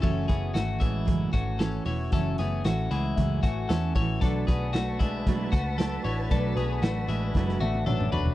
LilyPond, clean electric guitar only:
\new Staff \with { instrumentName = "Clean electric guitar" } { \time 4/4 \key fis \minor \tempo 4 = 115 <cis' a'>8 <b gis'>8 <a fis'>8 <gis e'>4 <a fis'>8 <cis' a'>8 <e' cis''>8 | <cis' a'>8 <b gis'>8 <a fis'>8 <gis e'>4 <a fis'>8 <cis' a'>8 <e' cis''>8 | <d' a'>8 <b gis'>8 <a fis'>8 <gis e'>4 <a fis'>8 <d' a'>8 <e' cis''>8 | <d' a'>8 <b gis'>8 <a fis'>8 <gis e'>4 <a fis'>8 <d' a'>8 <d' b'>8 | }